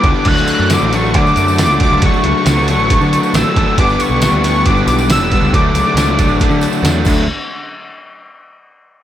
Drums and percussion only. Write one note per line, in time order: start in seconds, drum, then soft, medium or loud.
0.04 kick medium
0.04 closed hi-hat medium
0.16 snare soft
0.25 kick loud
0.25 crash loud
0.37 tambourine soft
0.47 closed hi-hat medium
0.47 tambourine medium
0.70 snare loud
0.70 closed hi-hat loud
0.70 tambourine medium
0.70 tambourine loud
0.93 closed hi-hat medium
0.93 tambourine medium
1.04 tambourine soft
1.14 kick medium
1.14 closed hi-hat loud
1.14 tambourine soft
1.26 tambourine soft
1.36 closed hi-hat medium
1.36 tambourine medium
1.48 tambourine medium
1.58 snare loud
1.58 closed hi-hat loud
1.58 tambourine loud
1.58 tambourine medium
1.80 kick medium
1.80 closed hi-hat medium
2.02 kick loud
2.02 closed hi-hat loud
2.14 tambourine soft
2.24 closed hi-hat medium
2.36 snare soft
2.46 snare loud
2.46 closed hi-hat loud
2.46 tambourine loud
2.46 tambourine medium
2.58 tambourine soft
2.68 closed hi-hat medium
2.68 tambourine medium
2.80 tambourine soft
2.90 kick medium
2.90 closed hi-hat loud
2.90 tambourine soft
3.02 tambourine soft
3.13 closed hi-hat medium
3.13 tambourine medium
3.23 tambourine medium
3.34 snare loud
3.34 closed hi-hat loud
3.34 tambourine loud
3.56 kick medium
3.56 closed hi-hat medium
3.68 snare soft
3.78 kick loud
3.78 closed hi-hat loud
3.89 tambourine soft
4.00 closed hi-hat medium
4.00 tambourine medium
4.21 snare loud
4.21 closed hi-hat medium
4.21 tambourine medium
4.21 tambourine loud
4.33 tambourine soft
4.44 closed hi-hat medium
4.44 tambourine medium
4.56 tambourine soft
4.66 kick medium
4.66 closed hi-hat loud
4.66 tambourine soft
4.77 tambourine soft
4.87 closed hi-hat medium
4.87 tambourine medium
4.98 tambourine medium
5.10 snare loud
5.10 closed hi-hat loud
5.10 tambourine loud
5.32 kick medium
5.32 closed hi-hat medium
5.54 kick loud
5.54 closed hi-hat loud
5.54 tambourine soft
5.75 closed hi-hat medium
5.75 tambourine medium
5.87 snare soft
5.97 snare loud
5.97 closed hi-hat loud
5.97 tambourine loud
6.18 kick medium
6.18 closed hi-hat medium
6.18 tambourine medium
6.29 tambourine soft
6.40 kick medium
6.40 closed hi-hat loud
6.40 tambourine soft
6.51 tambourine soft
6.61 closed hi-hat medium
6.61 tambourine medium
6.72 tambourine medium
6.85 snare loud
6.85 closed hi-hat loud
6.85 tambourine loud
7.05 kick loud
7.05 crash medium
7.05 tambourine loud